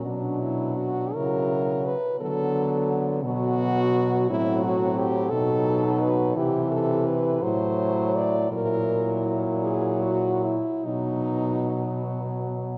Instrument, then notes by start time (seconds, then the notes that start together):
french horn
0.05 B2 F#3 D4
0.41 E4
0.76 F#4
1.14 C#3 F#3 E4 A#4
1.86 B4
2.20 D3 F#3 B3 A4
3.23 B2 F#3 B3 F#4
4.29 A2 F#3 C4 E4
4.64 F#4
4.81 C4
4.98 G4
5.30 B2 F#3 D#4 A4
6.01 B4
6.37 C3 E3 E4 G4
6.71 A4
7.06 B4
7.43 A2 F#3 E4 C5
8.15 D5
8.50 A#2 F#3 E4 A#4
9.62 G#4
10.02 F#4
10.44 E4
10.85 B2 F#3 B3 D#4